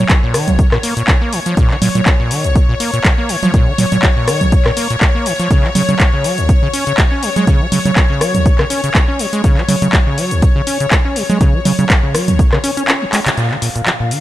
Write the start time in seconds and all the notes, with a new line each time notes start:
Already playing: C#5
0.09 F3, kick, clap, closed hi-hat, shaker
0.23 A#2
0.34 D#3, cross-stick, open hi-hat, shaker
0.48 A#1, closed hi-hat, low conga, shaker
0.59 C#3, kick, closed hi-hat, shaker
0.72 A#2, cross-stick, clap
0.83 A#3, open hi-hat, shaker
0.97 A#2, closed hi-hat, shaker
1.08 F3, kick, clap, closed hi-hat, shaker
1.22 A#3
1.33 D#3, open hi-hat, shaker
1.46 F3, closed hi-hat, shaker
1.57 A#2, kick, closed hi-hat, shaker
1.70 D#3, clap
1.82 A#2, open hi-hat, low conga, shaker
1.95 A#2, closed hi-hat, low conga, shaker
2.06 F3, kick, clap, closed hi-hat, shaker
2.20 A#2
2.31 D#3, open hi-hat, shaker
2.44 A#1, closed hi-hat, shaker
2.55 C#3, kick, closed hi-hat, shaker
2.69 A#2
2.80 A#3, open hi-hat, shaker
2.94 A#2, closed hi-hat, shaker
3.04 F3, kick, clap, closed hi-hat, shaker
3.18 A#3
3.29 D#3, open hi-hat, shaker
3.43 F3, closed hi-hat, low conga, shaker
3.54 A#2, kick, closed hi-hat, shaker
3.67 D#3
3.78 A#2, open hi-hat, low conga, shaker
3.92 A#2, closed hi-hat, low conga, shaker
4.03 F3, kick, clap, closed hi-hat, shaker
4.17 A#2
4.28 D#3, cross-stick, open hi-hat, shaker
4.41 A#1, closed hi-hat, low conga, shaker
4.52 C#3, kick, closed hi-hat, shaker
4.65 A#2, cross-stick, clap
4.77 A#3, open hi-hat, shaker
4.90 A#2, closed hi-hat, shaker
5.01 F3, kick, clap, closed hi-hat, shaker
5.15 A#3
5.26 D#3, open hi-hat, shaker
5.39 F3, closed hi-hat, shaker
5.51 C#3, kick, closed hi-hat, shaker
5.64 F#3, clap
5.75 C#3, open hi-hat, low conga, shaker
5.89 C#3, closed hi-hat, low conga, shaker
5.99 G#3, kick, clap, closed hi-hat, shaker
6.13 C#3
6.24 F#3, open hi-hat, shaker
6.38 C#2, closed hi-hat, shaker
6.49 E3, kick, closed hi-hat, shaker
6.62 C#3
6.74 C#4, open hi-hat, shaker
6.87 C#3, closed hi-hat, shaker
6.98 G#3, kick, clap, closed hi-hat, shaker
7.12 C#4
7.23 F#3, open hi-hat, shaker
7.36 G#3, closed hi-hat, low conga, shaker
7.47 C#3, kick, closed hi-hat, shaker
7.61 F#3
7.72 C#3, open hi-hat, low conga, shaker
7.85 C#3, closed hi-hat, low conga, shaker
7.96 G#3, kick, clap, closed hi-hat, shaker
8.10 C#3
8.21 F#3, cross-stick, open hi-hat, shaker
8.35 C#2, closed hi-hat, low conga, shaker
8.46 E3, kick, closed hi-hat, shaker
8.59 C#3, cross-stick, clap
8.70 C#4, open hi-hat, shaker
8.84 C#3, closed hi-hat, shaker
8.95 G#3, kick, clap, closed hi-hat, shaker
9.08 C#4
9.19 F#3, open hi-hat, shaker
9.33 G#3, closed hi-hat, shaker
9.44 C#3, kick, closed hi-hat, shaker
9.57 F#3, clap
9.69 C#3, open hi-hat, low conga, shaker
9.82 C#3, closed hi-hat, low conga, shaker
9.93 G#3, kick, clap, closed hi-hat, shaker
10.07 C#3
10.18 F#3, open hi-hat, shaker
10.31 C#2, closed hi-hat, shaker
10.42 E3, kick, closed hi-hat, shaker
10.56 C#3
10.67 C#4, open hi-hat, shaker
10.80 C#3, closed hi-hat, shaker
10.91 G#3, kick, clap, closed hi-hat, shaker
11.05 C#4
11.16 F#3, open hi-hat, shaker
11.30 G#3, closed hi-hat, low conga, shaker
11.41 C#3, kick, closed hi-hat, shaker
11.54 F#3
11.65 C#3, open hi-hat, low conga, shaker
11.79 C#3, closed hi-hat, low conga, shaker
11.90 G#3, kick, clap, closed hi-hat, shaker
12.03 C#3
12.14 F#3, cross-stick, open hi-hat, shaker
12.28 C#2, closed hi-hat, low conga, shaker
12.39 E3, kick, closed hi-hat, shaker
12.52 C#3, cross-stick, clap
12.64 C#4, open hi-hat, shaker
12.77 C#4, closed hi-hat, shaker
12.88 C#4, clap, closed hi-hat, shaker
13.02 C#3
13.13 G#3, clap, open hi-hat, shaker
13.26 C#3, clap, closed hi-hat, shaker
13.37 A#2 F5, closed hi-hat, shaker
13.51 D#3, clap
13.62 A#2, open hi-hat, shaker
13.76 A#2, closed hi-hat, shaker
13.86 F3, clap, closed hi-hat, shaker
14.00 A#2
14.11 D#3, open hi-hat, shaker